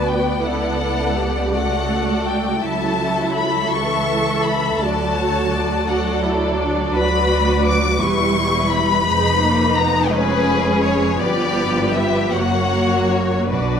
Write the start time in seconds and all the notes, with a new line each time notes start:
Already playing: D2 B3 F#4 B4 D5
0.06 G5
0.43 C#2 E4 A4 F#5
0.81 E4
1.18 G4
1.52 A3 F#4 A4 F#5
2.28 G5
2.63 C#2 F#3 E4 A4 E5 A5
3.36 B5
3.72 E3 A4 E5 C#6
4.45 B5
4.79 D2 F#3 F#4 A4 D5 A5
5.16 C#5
5.53 D5
5.88 F#4 A4 D5 F#5
6.24 E4
6.59 D4
6.95 D2 F#4 B4 B5
7.66 D6
8.00 E1 E2 G3 E4 B4 C#6
8.70 B5
9.08 F1 F2 G#3 D#4
9.43 A#3
9.76 B3 A#5
10.12 G#3 C#4 G#4 B4
10.82 C#5
11.20 G1 G2 F3 B3 G4 B4 D5
11.94 E5
12.32 F#1 F#2 F#3 A#3 F#4 C#5 F#5
13.12 C#5
13.50 B1 B2 F#3 D4 F#4 B4 D5